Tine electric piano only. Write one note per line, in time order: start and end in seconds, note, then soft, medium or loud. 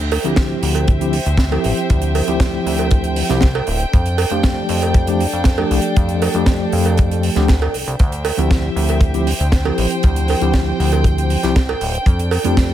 0.24 0.97 F3 medium
0.24 0.98 C4 medium
0.24 0.98 E4 medium
0.24 0.98 G4 medium
1.00 1.15 F3 medium
1.00 1.15 C4 medium
1.00 1.15 E4 medium
1.00 1.15 G4 medium
1.51 2.24 F3 medium
1.51 2.25 C4 medium
1.51 2.25 E4 medium
1.51 2.25 G4 medium
2.27 3.26 F3 medium
2.27 3.26 C4 medium
2.27 3.27 E4 medium
2.27 3.27 G4 medium
3.29 3.44 F3 medium
3.29 3.44 C4 medium
3.29 3.44 E4 medium
3.29 3.44 G4 medium
4.30 5.04 F3 medium
4.30 5.04 A3 medium
4.30 5.05 D4 medium
4.30 5.05 G4 medium
5.07 5.22 F3 medium
5.07 5.22 A3 medium
5.07 5.22 D4 medium
5.07 5.22 G4 medium
5.58 6.31 F3 medium
5.58 6.32 A3 medium
5.58 6.32 D4 medium
5.58 6.32 G4 medium
6.34 7.33 F3 medium
6.34 7.33 A3 medium
6.34 7.33 D4 medium
6.34 7.34 G4 medium
7.36 7.50 F3 medium
7.36 7.51 A3 medium
7.36 7.51 D4 medium
7.36 7.51 G4 medium
8.37 9.11 F3 medium
8.37 9.11 C4 medium
8.37 9.12 E4 medium
8.37 9.12 G4 medium
9.14 9.28 F3 medium
9.14 9.28 C4 medium
9.14 9.29 E4 medium
9.14 9.29 G4 medium
9.64 10.38 F3 medium
9.64 10.38 C4 medium
9.64 10.39 E4 medium
9.64 10.39 G4 medium
10.40 11.40 F3 medium
10.40 11.40 C4 medium
10.40 11.40 E4 medium
10.40 11.41 G4 medium
11.43 11.57 F3 medium
11.43 11.57 C4 medium
11.43 11.58 E4 medium
11.43 11.58 G4 medium
12.44 12.74 F3 medium
12.44 12.74 A3 medium
12.44 12.74 D4 medium
12.44 12.74 G4 medium